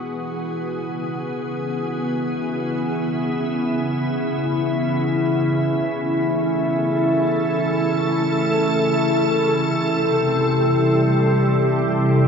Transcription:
0.00 0.45 E3 medium
0.00 12.28 E3 medium
0.00 6.79 B3 medium
0.00 12.28 E4 medium
0.00 2.25 F#4 medium
0.00 4.97 G#4 medium
0.45 9.50 C#3 medium
1.70 9.50 E4 medium
5.84 9.51 A3 medium
6.66 12.28 A4 medium
9.51 12.28 C3 medium
10.44 12.28 G3 medium

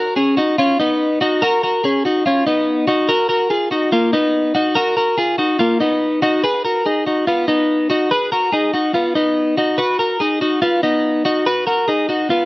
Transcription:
0.00 0.17 F#4 medium
0.00 0.16 A#4 medium
0.16 0.38 C#4 medium
0.16 0.37 G#4 medium
0.37 0.59 D#4 medium
0.37 0.58 F#4 medium
0.58 0.79 C#4 medium
0.58 0.79 F4 medium
0.80 1.19 B3 medium
0.80 1.19 D#4 medium
1.21 1.42 D#4 medium
1.21 1.42 F#4 medium
1.42 1.63 F#4 medium
1.42 1.62 A#4 loud
1.63 1.84 F#4 medium
1.63 1.84 A#4 medium
1.84 2.05 C#4 medium
1.84 2.05 G#4 medium
2.05 2.26 D#4 medium
2.05 2.25 F#4 medium
2.26 2.46 C#4 medium
2.26 2.47 F4 medium
2.47 2.86 B3 medium
2.47 2.86 D#4 medium
2.88 3.09 D#4 medium
2.88 3.08 F#4 medium
3.09 3.29 F#4 medium
3.09 3.28 A#4 loud
3.29 3.50 F#4 medium
3.29 3.50 A#4 medium
3.50 3.72 F4 medium
3.50 3.71 G#4 medium
3.71 3.92 D#4 medium
3.71 3.92 F#4 medium
3.92 4.13 A#3 medium
3.92 4.13 F4 medium
4.13 4.53 B3 medium
4.13 4.52 D#4 medium
4.55 4.76 D#4 medium
4.55 4.75 F#4 medium
4.75 4.96 F#4 medium
4.75 4.96 A#4 loud
4.97 5.17 F#4 medium
4.97 5.18 A#4 medium
5.18 5.39 F4 medium
5.18 5.38 G#4 medium
5.38 5.59 D#4 medium
5.38 5.59 F#4 medium
5.59 5.81 A#3 medium
5.59 5.80 F4 medium
5.80 6.20 B3 medium
5.80 6.20 D#4 medium
6.22 6.44 D#4 medium
6.22 6.43 F#4 medium
6.44 6.65 G#4 medium
6.44 6.64 B4 medium
6.65 6.85 F#4 medium
6.65 6.85 A#4 medium
6.86 7.06 D#4 medium
6.86 7.06 G#4 medium
7.07 7.27 D#4 soft
7.07 7.27 F#4 medium
7.27 7.48 B3 medium
7.27 7.48 F4 medium
7.48 7.88 B3 medium
7.48 7.87 D#4 medium
7.90 8.11 D#4 medium
7.90 8.11 F#4 medium
8.11 8.32 G#4 medium
8.11 8.32 B4 loud
8.32 8.52 F#4 medium
8.32 8.53 A#4 medium
8.52 8.73 D#4 medium
8.52 8.73 G#4 medium
8.74 8.94 D#4 soft
8.74 8.95 F#4 medium
8.94 9.15 B3 medium
8.94 9.15 F4 medium
9.15 9.56 B3 medium
9.15 9.55 D#4 medium
9.57 9.79 D#4 medium
9.57 9.78 F#4 medium
9.78 9.99 F#4 medium
9.78 9.99 B4 medium
9.99 10.20 F#4 soft
9.99 10.20 A#4 medium
10.20 10.41 D#4 medium
10.20 10.41 G#4 medium
10.41 10.62 D#4 soft
10.41 10.62 F#4 medium
10.62 10.83 B3 medium
10.62 10.83 F4 medium
10.83 11.23 B3 medium
10.83 11.23 D#4 medium
11.25 11.47 D#4 medium
11.25 11.46 F#4 medium
11.46 11.66 F#4 medium
11.46 11.66 B4 medium
11.67 11.87 F#4 medium
11.67 11.88 A#4 medium
11.88 12.09 D#4 medium
11.88 12.08 G#4 medium
12.09 12.30 D#4 soft
12.09 12.30 F#4 medium
12.30 12.45 B3 medium
12.30 12.45 F4 medium

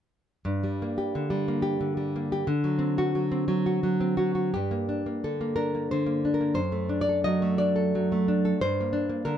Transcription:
0.45 2.42 G2 medium
0.64 1.29 G3 soft
0.82 1.47 A#3 soft
0.98 1.61 G4 soft
1.15 1.79 D3 soft
1.30 1.96 G3 soft
1.48 2.15 A#3 soft
1.62 2.31 G4 medium
1.81 2.46 D3 soft
1.97 2.46 G3 soft
2.16 2.47 A#3 soft
2.32 2.47 G4 medium
2.47 4.51 D3 medium
2.64 3.14 F#3 soft
2.79 3.30 C4 medium
2.98 3.65 F#4 medium
3.15 3.47 F#3 medium
3.32 3.99 C4 soft
3.48 3.82 F#3 medium
3.66 4.16 F#4 soft
3.83 4.18 F#3 medium
4.00 4.55 C4 soft
4.17 4.55 F#3 soft
4.17 4.34 F#4 medium
4.35 4.53 F#4 soft
4.54 6.54 G2 medium
4.54 5.20 G4 medium
4.71 5.05 A#3 soft
4.89 5.55 D4 soft
5.06 5.40 A#3 soft
5.24 5.91 D3 soft
5.24 5.55 A4 medium
5.41 5.74 A#3 soft
5.56 6.24 D4 soft
5.56 5.88 A#4 medium
5.75 6.05 A#3 soft
5.91 6.59 D3 soft
5.91 6.34 C5 medium
6.06 6.39 A#3 soft
6.25 6.58 D4 soft
6.34 6.56 A#4 medium
6.41 6.58 A#3 soft
6.54 8.52 F#2 medium
6.54 6.99 C5 medium
6.72 7.41 A3 soft
6.89 7.58 D4 soft
7.01 7.24 D5 medium
7.09 7.75 A4 soft
7.24 7.94 F#3 soft
7.24 7.57 D#5 medium
7.42 8.11 A3 soft
7.58 8.27 D4 soft
7.58 8.22 D5 medium
7.76 8.44 A4 medium
7.95 8.59 F#3 soft
8.12 8.59 A3 soft
8.28 8.59 D4 soft
8.45 8.59 A4 medium
8.61 9.38 G2 medium
8.61 9.22 C5 medium
8.81 9.08 A#3 soft
8.93 9.38 D4 medium
9.09 9.38 A#3 soft
9.25 9.38 D3 medium
9.25 9.38 A#4 medium

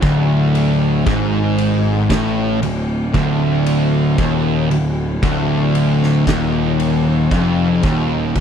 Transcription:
0.02 1.02 D1 loud
0.02 1.05 D2 loud
0.02 kick loud
0.02 ride medium
0.55 ride medium
1.06 2.06 G#1 medium
1.06 2.09 G#2 loud
1.06 kick loud
1.06 ride loud
1.58 ride medium
2.10 2.59 A1 loud
2.10 2.61 A2 loud
2.10 kick loud
2.10 snare loud
2.10 ride loud
2.62 3.11 D1 medium
2.62 3.04 D2 medium
2.62 ride medium
3.13 4.14 D1 loud
3.13 4.16 D2 loud
3.13 kick loud
3.13 ride medium
3.66 ride medium
4.18 4.67 D#1 loud
4.18 4.69 D#2 loud
4.18 kick loud
4.18 ride loud
4.70 5.19 D1 medium
4.70 5.12 D2 medium
4.70 ride medium
5.23 6.23 D1 medium
5.23 6.25 D2 loud
5.23 kick loud
5.23 ride loud
5.75 ride medium
6.03 snare soft
6.26 7.27 D#1 loud
6.26 7.29 D#2 loud
6.26 kick medium
6.26 snare loud
6.26 ride loud
6.80 ride medium
7.31 7.80 F1 loud
7.31 7.82 F2 loud
7.31 kick loud
7.31 ride loud
7.83 8.32 D#1 loud
7.83 8.35 D#2 loud
7.83 kick loud
7.83 ride medium
8.35 8.40 D1 medium
8.35 8.40 D2 loud
8.35 kick medium
8.35 crash loud
8.35 crash soft

